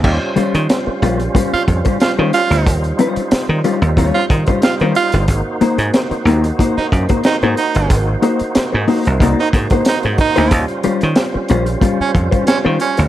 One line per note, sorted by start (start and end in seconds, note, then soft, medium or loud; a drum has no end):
0.04 0.17 D#2 loud
0.04 5.25 G3 medium
0.04 2.64 C#4 medium
0.04 5.25 F4 medium
0.04 13.08 C5 medium
0.04 kick loud
0.04 crash loud
0.36 0.53 G3 medium
0.36 0.53 C#4 medium
0.36 0.53 F4 medium
0.36 0.53 C5 medium
0.36 muted slap bass stroke soft
0.36 closed hi-hat medium
0.55 0.66 D#3 loud
0.55 closed hi-hat soft
0.69 muted clean electric guitar stroke soft
0.69 snare loud
0.69 closed hi-hat medium
0.87 muted clean electric guitar stroke soft
0.87 muted slap bass stroke medium
1.02 1.27 A#1 medium
1.02 1.19 G3 medium
1.02 1.19 C#4 medium
1.02 1.19 F4 loud
1.02 1.19 C5 medium
1.02 closed hi-hat medium
1.20 muted clean electric guitar stroke soft
1.20 closed hi-hat soft
1.35 1.51 G3 medium
1.35 1.51 C#4 medium
1.35 1.51 F4 medium
1.35 1.52 C5 medium
1.35 kick medium
1.35 closed hi-hat medium
1.53 1.63 F4 medium
1.53 muted slap bass stroke soft
1.53 snare soft
1.68 1.81 F2 medium
1.68 muted clean electric guitar stroke soft
1.68 kick medium
1.68 closed hi-hat medium
1.85 1.97 G3 soft
1.85 1.97 C#4 medium
1.85 1.97 F4 medium
1.85 1.96 C5 medium
1.85 kick loud
1.85 closed hi-hat medium
2.00 2.12 F4 medium
2.00 muted clean electric guitar stroke soft
2.00 snare loud
2.00 closed hi-hat medium
2.19 2.30 D#3 loud
2.19 2.33 G3 medium
2.19 2.33 C#4 medium
2.19 2.33 F4 medium
2.19 2.33 C5 medium
2.33 2.76 F4 loud
2.33 muted clean electric guitar stroke soft
2.33 closed hi-hat medium
2.50 2.67 D2 medium
2.50 muted clean electric guitar stroke soft
2.50 closed hi-hat medium
2.67 2.91 D#2 medium
2.67 5.26 D#4 medium
2.67 kick loud
2.67 closed hi-hat loud
2.84 closed hi-hat soft
2.99 3.20 G3 medium
2.99 3.20 C#4 medium
2.99 3.20 F4 medium
2.99 3.21 C5 loud
2.99 closed hi-hat medium
3.16 muted slap bass stroke soft
3.16 closed hi-hat soft
3.31 muted slap bass stroke medium
3.31 muted clean electric guitar stroke soft
3.31 snare loud
3.31 closed hi-hat medium
3.49 3.61 D#3 medium
3.49 muted clean electric guitar stroke soft
3.64 3.81 G3 medium
3.64 3.81 C#4 medium
3.64 3.81 F4 medium
3.64 3.81 C5 medium
3.64 closed hi-hat medium
3.82 3.94 D#2 medium
3.82 muted clean electric guitar stroke medium
3.82 closed hi-hat medium
3.97 4.10 D#2 medium
3.97 4.18 G3 medium
3.97 4.18 C#4 medium
3.97 4.18 F4 loud
3.97 4.19 C#5 medium
3.97 kick medium
3.97 closed hi-hat medium
4.14 4.24 F4 loud
4.14 snare soft
4.30 4.43 D#3 medium
4.30 muted clean electric guitar stroke soft
4.30 kick loud
4.30 closed hi-hat medium
4.46 4.60 G3 medium
4.46 4.60 C#4 medium
4.46 4.59 F4 medium
4.46 4.59 C5 medium
4.46 kick medium
4.46 closed hi-hat medium
4.62 4.75 F4 medium
4.62 muted clean electric guitar stroke soft
4.62 snare loud
4.62 closed hi-hat medium
4.80 4.92 D#3 medium
4.80 4.96 G3 medium
4.80 4.96 C#4 medium
4.80 4.96 F4 medium
4.80 4.95 C5 medium
4.80 closed hi-hat soft
4.95 5.17 F4 loud
4.95 muted clean electric guitar stroke soft
4.95 closed hi-hat medium
5.12 5.28 G1 medium
5.12 muted clean electric guitar stroke soft
5.12 closed hi-hat medium
5.28 5.41 G#1 loud
5.28 10.48 A#3 medium
5.28 10.49 D#4 medium
5.28 10.48 F#4 medium
5.28 kick medium
5.28 closed hi-hat loud
5.61 5.77 A#3 medium
5.61 5.78 D#4 medium
5.61 5.77 F#4 loud
5.61 5.78 C5 medium
5.61 muted slap bass stroke soft
5.61 closed hi-hat medium
5.78 5.90 G#2 loud
5.78 closed hi-hat medium
5.93 muted clean electric guitar stroke soft
5.93 snare loud
5.93 closed hi-hat medium
6.11 muted slap bass stroke soft
6.11 muted clean electric guitar stroke soft
6.11 closed hi-hat soft
6.25 6.50 D#2 medium
6.25 6.43 A#3 medium
6.25 6.43 D#4 medium
6.25 6.43 F#4 loud
6.25 6.44 C5 medium
6.25 closed hi-hat medium
6.44 muted clean electric guitar stroke medium
6.44 closed hi-hat medium
6.59 6.76 A#3 medium
6.59 6.76 D#4 medium
6.59 6.76 F#4 loud
6.59 6.76 C5 loud
6.59 kick medium
6.59 closed hi-hat medium
6.77 6.87 D#4 medium
6.77 muted slap bass stroke soft
6.77 snare soft
6.92 7.05 F#2 medium
6.92 muted clean electric guitar stroke soft
6.92 kick loud
6.92 closed hi-hat medium
7.09 7.21 A#3 medium
7.09 7.21 D#4 medium
7.09 7.21 F#4 medium
7.09 7.21 C5 medium
7.09 kick medium
7.09 closed hi-hat medium
7.24 7.37 D#4 loud
7.24 muted clean electric guitar stroke soft
7.24 snare loud
7.24 closed hi-hat medium
7.42 7.54 G#2 loud
7.42 7.56 A#3 medium
7.42 7.57 D#4 medium
7.42 7.57 F#4 medium
7.42 7.57 C5 medium
7.42 closed hi-hat soft
7.57 8.00 D#4 loud
7.57 muted clean electric guitar stroke soft
7.57 closed hi-hat medium
7.75 7.87 G1 medium
7.75 muted clean electric guitar stroke soft
7.75 closed hi-hat medium
7.90 8.15 G#1 loud
7.90 kick loud
7.90 closed hi-hat loud
8.22 8.39 A#3 medium
8.22 8.39 D#4 medium
8.22 8.39 F#4 loud
8.22 8.39 C5 medium
8.22 closed hi-hat medium
8.39 muted slap bass stroke soft
8.39 closed hi-hat medium
8.55 muted clean electric guitar stroke soft
8.55 muted slap bass stroke medium
8.55 snare loud
8.55 closed hi-hat loud
8.72 8.85 G#2 loud
8.72 muted clean electric guitar stroke soft
8.87 9.04 A#3 medium
8.87 9.04 D#4 loud
8.87 9.04 F#4 medium
8.87 9.04 C5 medium
8.87 open hi-hat medium
9.05 9.18 C2 medium
9.05 muted clean electric guitar stroke medium
9.05 closed hi-hat soft
9.20 9.34 C2 medium
9.20 9.37 A#3 medium
9.20 9.38 D#4 medium
9.20 9.38 F#4 medium
9.20 9.38 D5 medium
9.20 kick medium
9.20 closed hi-hat medium
9.39 9.49 D#4 medium
9.39 snare soft
9.53 9.66 G#2 medium
9.53 muted clean electric guitar stroke soft
9.53 kick loud
9.53 closed hi-hat medium
9.70 9.83 A#3 soft
9.70 9.83 D#4 medium
9.70 9.83 F#4 medium
9.70 9.83 C5 medium
9.70 kick loud
9.70 closed hi-hat soft
9.85 9.99 D#4 medium
9.85 muted clean electric guitar stroke soft
9.85 snare loud
9.85 closed hi-hat loud
10.03 10.16 G#2 medium
10.03 muted clean electric guitar stroke soft
10.03 closed hi-hat soft
10.18 10.62 D#4 loud
10.18 kick medium
10.18 closed hi-hat medium
10.36 10.49 D2 medium
10.36 10.51 A#3 medium
10.36 10.51 D#4 medium
10.36 10.51 F#4 medium
10.36 10.50 C5 medium
10.36 closed hi-hat medium
10.50 10.65 D#2 loud
10.50 13.08 G3 medium
10.50 13.08 C#4 medium
10.50 13.08 F4 medium
10.50 kick medium
10.50 closed hi-hat loud
10.68 closed hi-hat soft
10.83 11.00 G3 loud
10.83 11.00 C#4 medium
10.83 11.00 F4 loud
10.83 11.01 C5 loud
10.83 muted slap bass stroke soft
10.83 closed hi-hat medium
11.01 11.14 D#3 loud
11.01 closed hi-hat soft
11.16 muted clean electric guitar stroke soft
11.16 snare loud
11.16 closed hi-hat medium
11.34 muted clean electric guitar stroke soft
11.34 muted slap bass stroke medium
11.48 11.75 A#1 medium
11.48 11.66 G3 medium
11.48 11.66 C#4 medium
11.48 11.66 F4 medium
11.48 11.65 C5 medium
11.48 closed hi-hat medium
11.66 muted clean electric guitar stroke soft
11.66 closed hi-hat soft
11.81 11.98 G3 medium
11.81 11.98 C#4 medium
11.81 11.98 F4 medium
11.81 11.99 C5 medium
11.81 kick medium
11.81 closed hi-hat medium
12.00 12.10 C#4 loud
12.00 muted slap bass stroke soft
12.14 12.28 F2 medium
12.14 muted clean electric guitar stroke soft
12.14 kick medium
12.14 closed hi-hat medium
12.31 12.44 G3 medium
12.31 12.44 C#4 medium
12.31 12.43 F4 medium
12.31 12.43 C5 medium
12.31 kick medium
12.31 closed hi-hat medium
12.46 12.58 C#4 medium
12.46 muted clean electric guitar stroke soft
12.46 snare loud
12.46 closed hi-hat loud
12.65 12.77 D#3 loud
12.65 12.79 G3 medium
12.65 12.79 C#4 medium
12.65 12.79 F4 medium
12.65 12.79 C5 medium
12.80 13.02 C#4 loud
12.80 muted clean electric guitar stroke soft
12.80 closed hi-hat medium
12.97 13.08 D2 medium
12.97 muted clean electric guitar stroke medium
12.97 closed hi-hat medium